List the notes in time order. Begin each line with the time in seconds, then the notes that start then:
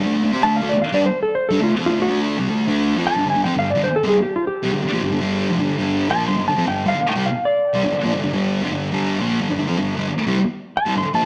0.04 D3 A3
0.14 D3 A3
0.23 D3 A3
0.32 C4 G4
0.42 D3 A3 A5
0.56 F5
0.61 D3 A3
0.69 D5, muted distorted electric guitar stroke
0.82 F5
0.93 G3 D4 D5
1.06 C5
1.23 A4
1.35 C5
1.49 G3 D4 A4
1.60 D3 A3 F4
1.70 muted distorted electric guitar stroke
1.79 F3 C4
1.86 D3 F4
1.90 A3
1.99 D3 A3 F#4
2.08 D3 A3 D4
2.38 C3 G3
2.49 D3 A3
2.67 D3 A3 D4
2.96 F3 C4 F4
3.07 A5
3.15 G2 D3
3.25 G2 D3
3.30 G#5
3.35 G2 D3
3.44 F3 C4 G5
3.55 G2 D3 F5
3.70 D5
3.75 G2 D3
3.84 C5, muted distorted electric guitar stroke
3.96 A4
4.03 C3 G3
4.08 G#4
4.22 G4
4.36 F4
4.47 G4
4.63 C3 G3
4.72 G2 D3
4.83 muted distorted electric guitar stroke
4.92 A#2 F3
5.02 G2 D3
5.12 G2 D3
5.21 G2 D3 G3
5.50 F2 C3
5.60 G2 D3
5.79 G2 D3 G3
6.10 A#2 F3 A#3 A5
6.27 G2 D3 C6
6.37 G2 D3
6.48 G2 D3 A5
6.57 F3 C4
6.66 G2 D3 G5
6.86 G2 D3 F5
6.95 muted distorted electric guitar stroke
7.09 G5
7.16 C3 G3
7.26 F5
7.45 D5
7.74 C3 G3
7.83 G2 D3
7.94 muted distorted electric guitar stroke
8.03 A#2 F3
8.13 G2 D3
8.23 G2 D3
8.33 G2 D3 G3
8.62 F2 C3
8.72 G2 D3
8.92 G2 D3 G3
9.19 A#2 F3 A#3
9.40 G2 D3
9.49 G2 D3
9.58 G2 D3
9.67 F3 C4
9.77 G2 D3
9.97 G2 D3
10.09 muted distorted electric guitar stroke
10.27 C3 G3
10.77 A5
10.86 C3 G3
10.95 G2 D3 C6
11.04 muted distorted electric guitar stroke
11.14 A#2 F3 A5